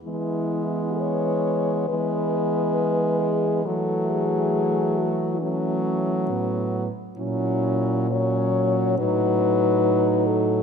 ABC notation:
X:1
M:4/4
L:1/8
Q:1/4=68
K:E
V:1 name="French horn"
E2 c2 B3 G | A G2 F C3 z | E2 c2 B3 A |]
V:2 name="French horn"
B,4 B,4 | A,4 A,2 B, z | C2 C2 D4 |]
V:3 name="French horn" clef=bass
G,4 G,4 | F,4 F,3 z | F,2 F,2 F,4 |]
V:4 name="French horn" clef=bass
E,4 E,4 | E,6 A,, z | ^A,,4 =A,,4 |]